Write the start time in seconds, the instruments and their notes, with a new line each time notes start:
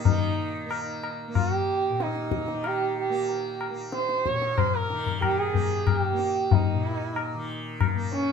Already playing: tanpura A#2 D#3 A#3
0.05 tanpura D#3, sarangi D#4, tabla tin, tabla ge
0.66 tanpura A#3
0.71 tabla na
1.03 tabla na
1.28 tanpura A#3
1.35 sarangi G4, tabla na, tabla ge
1.89 tanpura A#2
2.00 sarangi D#4, tabla te
2.15 tabla te
2.31 tabla ke
2.48 tanpura D#3, tabla te
2.64 sarangi G4, tabla na
2.99 sarangi G4
3.10 tanpura A#3
3.29 tabla tin
3.61 tabla na
3.70 tanpura A#3
3.92 sarangi C5, tabla te
4.09 tabla te
4.26 sarangi C#5, tabla ke
4.30 tanpura A#2
4.42 tabla te
4.58 sarangi C5, tabla na, tabla ge
4.75 sarangi A#4
4.90 tanpura D#3, tabla te
5.06 tabla ge
5.22 sarangi G4, tabla na, tabla ge
5.39 sarangi G#4
5.53 tanpura A#3, tabla ge
5.87 sarangi G#4, tabla na, tabla ge
5.99 sarangi G4
6.13 tanpura A#3
6.19 tabla te
6.51 sarangi D#4, tabla tin, tabla ge
6.74 tanpura A#2
7.16 tabla na
7.34 tanpura D#3
7.81 tabla na, tabla ge
7.95 tanpura A#3
8.13 sarangi C#4, tabla te